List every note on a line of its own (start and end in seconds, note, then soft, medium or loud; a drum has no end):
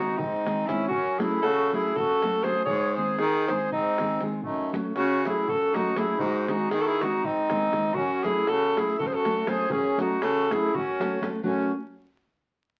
0.00 0.15 D#3 medium
0.00 0.15 G#3 medium
0.00 0.15 C4 medium
0.00 0.16 D#4 medium
0.00 0.19 D#4 medium
0.00 0.19 F#4 medium
0.00 0.16 G#4 medium
0.08 davul high soft
0.17 0.47 G#2 medium
0.17 0.67 C4 medium
0.17 0.68 D#4 loud
0.17 davul low loud
0.32 davul high soft
0.45 0.63 D#3 medium
0.45 0.64 G#3 medium
0.45 0.64 C4 medium
0.45 0.64 D#4 medium
0.45 0.64 G#4 medium
0.45 davul high medium
0.66 0.86 D#3 medium
0.66 0.86 G#3 medium
0.66 0.86 C4 medium
0.66 0.87 C#4 medium
0.66 0.87 D#4 medium
0.66 0.87 E4 loud
0.66 0.87 G#4 medium
0.66 davul high medium
0.80 davul high soft
0.88 1.22 F#2 loud
0.88 1.17 C#4 medium
0.88 1.21 F#4 medium
0.88 davul low medium
1.19 1.38 F#3 medium
1.19 1.38 A3 medium
1.19 1.39 C#4 medium
1.19 1.43 E4 medium
1.19 1.39 F#4 medium
1.19 1.41 G#4 medium
1.19 1.39 A4 medium
1.19 davul high medium
1.32 davul high soft
1.42 1.74 C#3 loud
1.42 1.70 F#4 loud
1.42 1.75 A4 loud
1.42 davul high medium
1.59 davul high soft
1.72 1.91 F#3 medium
1.72 1.91 A3 medium
1.72 1.92 C#4 medium
1.72 1.96 E4 medium
1.72 1.92 F#4 medium
1.72 1.97 G#4 loud
1.72 1.92 A4 medium
1.84 davul high soft
1.95 2.38 F#2 medium
1.95 2.44 F#4 medium
1.95 2.45 A4 loud
1.95 davul low medium
2.09 davul high soft
2.22 2.41 F#3 medium
2.22 2.41 A3 medium
2.22 2.41 C#4 medium
2.22 2.41 F#4 medium
2.22 2.41 A4 medium
2.22 davul high medium
2.33 davul high soft
2.43 2.62 F#3 medium
2.43 2.62 A3 medium
2.43 2.63 C#4 medium
2.43 2.63 F#4 medium
2.43 2.63 G#4 medium
2.43 2.63 A4 medium
2.43 2.64 C5 loud
2.43 davul high medium
2.55 davul high soft
2.64 2.98 G#2 loud
2.64 2.93 G#4 medium
2.64 2.97 C#5 loud
2.64 davul low medium
2.96 3.15 D#3 medium
2.96 3.15 G#3 medium
2.96 3.16 C4 medium
2.96 3.16 D#4 medium
2.96 3.19 G#4 medium
2.96 3.16 G#4 medium
2.96 3.18 C5 medium
3.08 davul high soft
3.17 3.51 D#3 loud
3.17 3.46 D#4 medium
3.17 3.47 G#4 loud
3.17 davul high medium
3.34 davul high soft
3.47 3.68 D#3 medium
3.47 3.68 G#3 medium
3.47 3.68 C4 medium
3.47 3.69 D#4 medium
3.47 3.70 G#4 medium
3.47 3.70 C5 medium
3.47 davul high medium
3.51 3.69 G#4 medium
3.60 davul high soft
3.72 4.15 G#2 loud
3.72 4.22 C4 medium
3.72 4.23 D#4 medium
3.72 davul low medium
3.98 4.17 D#3 medium
3.98 4.17 G#3 medium
3.98 4.17 C4 medium
3.98 4.18 D#4 medium
3.98 4.18 G#4 medium
3.98 davul high medium
4.21 4.39 D#3 medium
4.21 4.39 G#3 medium
4.21 4.39 C4 medium
4.21 4.40 D#4 soft
4.21 4.40 G#4 medium
4.21 davul high medium
4.32 davul high soft
4.43 4.75 F#2 loud
4.43 4.70 A3 medium
4.43 4.71 D#4 medium
4.43 davul low medium
4.72 4.91 F#3 medium
4.72 4.91 A3 medium
4.72 4.92 C#4 medium
4.72 4.92 F#4 medium
4.72 4.92 A4 medium
4.72 davul high medium
4.85 davul high soft
4.95 5.28 C#3 loud
4.95 5.23 C#4 medium
4.95 5.29 F#4 loud
4.95 davul high medium
5.10 davul high soft
5.24 5.44 F#3 medium
5.24 5.44 A3 medium
5.24 5.44 C#4 medium
5.24 5.48 E4 medium
5.24 5.45 F#4 medium
5.24 5.51 G#4 medium
5.24 5.45 A4 medium
5.24 davul high medium
5.37 davul high soft
5.47 5.77 F#2 medium
5.47 5.74 F#4 medium
5.47 5.76 A4 medium
5.47 davul low medium
5.61 davul high soft
5.72 5.92 F#3 medium
5.72 5.93 A3 medium
5.72 5.93 C#4 medium
5.72 5.95 D#4 medium
5.72 6.00 F#4 medium
5.72 5.93 F#4 medium
5.72 davul high medium
5.77 5.93 A4 medium
5.86 davul high soft
5.96 6.14 F#3 medium
5.96 6.14 A3 medium
5.96 6.14 C#4 medium
5.96 6.19 E4 medium
5.96 6.15 F#4 medium
5.96 6.22 G#4 medium
5.96 6.15 A4 medium
5.96 davul high medium
6.08 davul high soft
6.18 6.50 G#2 loud
6.18 6.46 D#4 medium
6.18 6.48 F#4 medium
6.18 davul low medium
6.47 6.66 D#3 medium
6.47 6.67 G#3 medium
6.47 6.67 C4 medium
6.47 6.69 D#4 medium
6.47 6.67 D#4 medium
6.47 6.72 F#4 medium
6.47 6.67 G#4 medium
6.47 davul high medium
6.60 davul high soft
6.71 7.03 D#3 loud
6.71 6.78 D#4 medium
6.71 6.82 G#4 loud
6.71 davul high medium
6.78 6.86 F#4 medium
6.78 6.89 A4 medium
6.85 7.00 E4 medium
6.85 7.04 G#4 loud
6.85 davul high soft
7.00 7.19 D#3 medium
7.00 7.20 G#3 medium
7.00 7.20 C4 medium
7.00 7.23 D#4 medium
7.00 7.20 D#4 medium
7.00 7.26 F#4 medium
7.00 7.20 G#4 medium
7.00 davul high medium
7.13 davul high soft
7.23 7.66 G#2 medium
7.23 7.94 C4 medium
7.23 7.95 D#4 loud
7.23 davul low medium
7.50 7.68 D#3 medium
7.50 7.68 G#3 medium
7.50 7.69 C4 medium
7.50 7.69 D#4 medium
7.50 7.69 G#4 medium
7.50 davul high medium
7.62 davul high soft
7.71 7.90 D#3 medium
7.71 7.90 G#3 medium
7.71 7.90 C4 medium
7.71 7.90 D#4 medium
7.71 7.91 G#4 medium
7.71 davul high medium
7.85 davul high soft
7.94 8.26 F#2 loud
7.94 8.24 C#4 medium
7.94 8.25 F#4 loud
7.94 davul low medium
8.24 8.42 F#3 medium
8.24 8.42 A3 medium
8.24 8.42 C#4 medium
8.24 8.47 E4 medium
8.24 8.43 F#4 medium
8.24 8.50 G#4 loud
8.24 8.43 A4 medium
8.24 davul high medium
8.36 davul high soft
8.47 8.78 C#3 loud
8.47 8.76 F#4 medium
8.47 8.79 A4 loud
8.47 davul high medium
8.62 davul high soft
8.76 8.94 F#3 medium
8.76 8.95 A3 medium
8.76 8.95 C#4 medium
8.76 8.99 E4 medium
8.76 8.95 F#4 medium
8.76 8.98 G#4 loud
8.76 8.95 A4 medium
8.76 davul high medium
8.89 davul high soft
8.99 9.41 F#2 medium
8.99 9.06 F#4 medium
8.99 9.08 A4 loud
8.99 davul low medium
9.07 9.15 G#4 medium
9.07 9.15 C5 medium
9.12 9.48 F#4 medium
9.12 9.50 A4 loud
9.12 davul high soft
9.25 9.43 F#3 medium
9.25 9.43 A3 medium
9.25 9.43 C#4 medium
9.25 9.44 F#4 medium
9.25 9.44 A4 medium
9.25 davul high medium
9.37 davul high soft
9.46 9.64 F#3 medium
9.46 9.65 A3 medium
9.46 9.65 C#4 medium
9.46 9.65 F#4 medium
9.46 9.70 G#4 medium
9.46 9.65 A4 medium
9.46 9.73 C5 loud
9.46 davul high medium
9.59 davul high soft
9.69 10.01 F#2 loud
9.69 9.99 C#4 loud
9.69 10.00 G#4 loud
9.69 davul low loud
9.85 davul high soft
9.97 10.16 F#3 medium
9.97 10.17 A3 medium
9.97 10.17 C#4 medium
9.97 10.20 D#4 medium
9.97 10.17 F#4 medium
9.97 10.24 F#4 loud
9.97 10.17 A4 medium
9.97 davul high medium
10.10 davul high soft
10.21 10.53 C#3 loud
10.21 10.52 F#4 medium
10.21 10.53 A4 loud
10.21 davul high medium
10.49 10.69 F#3 medium
10.49 10.69 A3 medium
10.49 10.69 C#4 medium
10.49 10.75 E4 medium
10.49 10.69 F#4 medium
10.49 10.77 G#4 loud
10.49 10.70 A4 medium
10.49 davul high medium
10.63 davul high soft
10.74 11.02 F#2 medium
10.74 11.28 C#4 medium
10.74 11.28 F#4 medium
10.74 davul low medium
10.87 davul high soft
10.99 11.17 F#3 medium
10.99 11.18 A3 medium
10.99 11.18 C#4 medium
10.99 11.18 F#4 medium
10.99 11.18 A4 medium
10.99 davul high medium
11.11 davul high soft
11.21 11.39 F#3 medium
11.21 11.39 A3 medium
11.21 11.39 C#4 medium
11.21 11.40 F#4 medium
11.21 11.40 A4 medium
11.21 davul high medium
11.33 davul high soft
11.43 11.71 F#2 loud
11.43 11.71 F#3 medium
11.43 11.71 A3 medium
11.43 11.71 C#4 medium
11.43 11.72 C#4 medium
11.43 11.71 F#4 medium
11.43 davul low medium